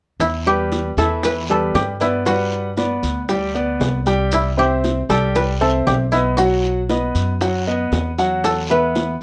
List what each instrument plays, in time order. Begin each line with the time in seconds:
0.20 upright bass E2, koto E4, high bongo, long guiro, maracas
0.46 grand piano G3 G4 B4, koto G4, high bongo, maracas
0.72 high bongo, short guiro, maracas
0.97 upright bass E2, grand piano E3 E4 E5, koto A4, high bongo, short guiro, maracas
1.23 koto B4, high bongo, long guiro, maracas
1.49 grand piano G3 G4 B4, koto A4, maracas
1.74 upright bass G2, koto G4, high bongo, low bongo, short guiro, maracas
2.00 grand piano B3 B4 D5, koto E4, high bongo, short guiro, maracas
2.26 grand piano G3 B4 F#5, koto F#4, high bongo, long guiro, maracas
2.52 high bongo, maracas
2.77 grand piano B3 B4 D5, high bongo, short guiro, maracas
3.03 upright bass D2, high bongo, short guiro, maracas
3.29 grand piano G3 G4 G5, high bongo, long guiro, maracas
3.54 grand piano B3 B4 D5, maracas
3.80 upright bass C2, high bongo, low bongo, short guiro, maracas
4.06 grand piano G3 G4 G5, high bongo, short guiro, maracas
4.32 koto E4, high bongo, long guiro, maracas
4.57 grand piano C4 C5 E5, koto G4, high bongo, maracas
4.84 high bongo, short guiro, maracas
5.09 upright bass C2, grand piano G3 G4 G5, koto A4, high bongo, short guiro, maracas
5.35 koto B4, high bongo, long guiro, maracas
5.61 grand piano C4 C5 E5, koto A4, maracas
5.87 upright bass B1, koto G4, high bongo, low bongo, short guiro, maracas
6.12 grand piano B3 B4 D#5, koto E4, high bongo, short guiro, maracas
6.37 grand piano F#3 F#4 F#5, koto F#4, high bongo, long guiro, maracas
6.64 high bongo, maracas
6.90 grand piano B3 B4 D#5, high bongo, short guiro, maracas
7.15 upright bass F#2, high bongo, short guiro, maracas
7.41 grand piano F#3 F#4 F#5, high bongo, long guiro, maracas
7.67 grand piano B3 B4 D#5, maracas
7.92 upright bass E2, high bongo, low bongo, short guiro, maracas
8.18 grand piano F#3 F#4 F#5, high bongo, short guiro, maracas
8.44 koto A4, high bongo, long guiro, maracas
8.70 grand piano B3 B4 E5, koto B4, high bongo, maracas
8.95 high bongo, short guiro, maracas